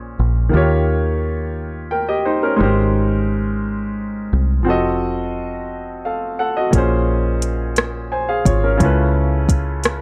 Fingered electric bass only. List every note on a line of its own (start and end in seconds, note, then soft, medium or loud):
0.00 0.15 A#1 medium
0.19 0.50 A#1 medium
0.54 2.62 D#2 medium
2.60 4.28 G#1 medium
4.33 4.67 C2 medium
4.67 6.70 F1 medium
6.74 8.42 A#1 medium
8.46 8.77 G#1 medium
8.81 10.02 C#2 medium